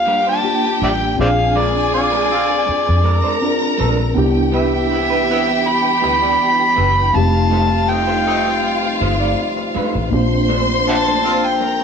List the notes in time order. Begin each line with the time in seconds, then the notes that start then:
Already playing: A#3 D4 F4 G4 F5
0.06 F2 G3 D4 F4 G4 A#4 G5
0.27 G3 D4 F4 C5 A5
0.43 A#3 D4 F4 G4, muted clean electric guitar stroke
0.64 muted clean electric guitar stroke
0.81 A1 G3 D4 F4 A#4 D5 E5 G5
1.02 muted clean electric guitar stroke
1.17 A#1 C4 D4 F4 G#4 G#5
1.21 C5 D5 F5
1.55 G#3 C4 D4 A#4 D5
1.92 D3 C4 F4 D5, muted clean electric guitar stroke
2.12 G#3 C4 D4 A#4
2.29 D3 C4 F4, muted clean electric guitar stroke
2.49 muted clean electric guitar stroke
2.66 muted clean electric guitar stroke, muted fingered electric bass stroke
2.86 F2, muted clean electric guitar stroke
3.04 G#3 C4 D4 A#4 A#5
3.23 G#3 C4 D4 C5
3.41 C4 D4 F4 A#4, muted clean electric guitar stroke
3.62 muted clean electric guitar stroke
3.78 A#1 G#3 C4 D4 A#4
3.98 muted clean electric guitar stroke
4.14 C2 C3 E3 G3 B3 D4 E4 G4 G5
4.52 B3 E4 G4 B4 E5
4.90 C3 B3 E4, muted clean electric guitar stroke
5.10 B3 E4 G4 B4
5.28 C3 B3 E4, muted clean electric guitar stroke
5.47 muted clean electric guitar stroke
5.64 B5, muted clean electric guitar stroke
5.85 muted clean electric guitar stroke
6.02 D2 B3 E4 G4 B4
6.22 B3 E4 G4 D5
6.39 muted clean electric guitar stroke
6.60 muted clean electric guitar stroke
6.76 F#1 B3 E4 G4 B4
6.96 muted clean electric guitar stroke
7.13 F1 F3 G#3 C4 D#4 F4 G4 F5 A5
7.20 A3
7.51 A3 D#4 G4 C5
7.88 C3 A3 D#4 G5, muted clean electric guitar stroke
8.07 A3 D#4 G4 C5
8.25 C3 A3 D#4, muted clean electric guitar stroke
8.46 muted clean electric guitar stroke
8.62 muted clean electric guitar stroke
8.83 muted clean electric guitar stroke
9.00 G1 A3 D#4 G4 C5
9.20 A3 D#4 G4 D5
9.37 muted clean electric guitar stroke
9.57 muted clean electric guitar stroke
9.74 A3 D#4 G4 C5, muted fingered electric bass stroke
9.94 A1, muted clean electric guitar stroke
10.11 A#1 A#3 C4 D4 F4 C5 C6
10.49 A3 D4 F4 C5
10.86 A2 F3 D4 E5 F#5 A5, muted clean electric guitar stroke
11.06 A3 D4 F4 C5
11.23 D3 C4 F4, muted clean electric guitar stroke
11.43 G5, muted clean electric guitar stroke
11.61 A#4 A#5, muted clean electric guitar stroke